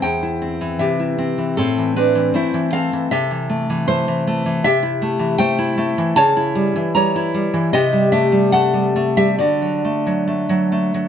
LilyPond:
\new Staff \with { instrumentName = "Nylon-string guitar" } { \time 2/4 \key a \minor \tempo 4 = 77 << { <c'' g''>4 <g' e''>4 | <c' a'>8 <d' b'>8 <e' c''>8 <a' f''>8 | <a' e''>4 <e' c''>4 | \key d \mixolydian <g' e''>4 <c'' g''>4 |
<cis'' a''>4 <cis'' ais''>4 | <g' ees''>8 <g' e''>8 <a' fis''>8. <g' e''>16 | <fis' d''>4. r8 | } \\ { e,16 e'16 c'16 e16 c16 e'16 c'16 e16 | a,16 e16 c'16 e16 a16 e16 c'16 e16 | c16 e16 a16 e16 a16 e16 a16 e16 | c16 e'16 a16 e16 a16 e'16 a16 e16 |
cis16 e'16 g16 e16 g16 e'16 g16 e16 | c16 g16 a16 g16 a16 g16 a16 g16 | d16 fis16 a16 fis16 a16 fis16 a16 fis16 | } >> }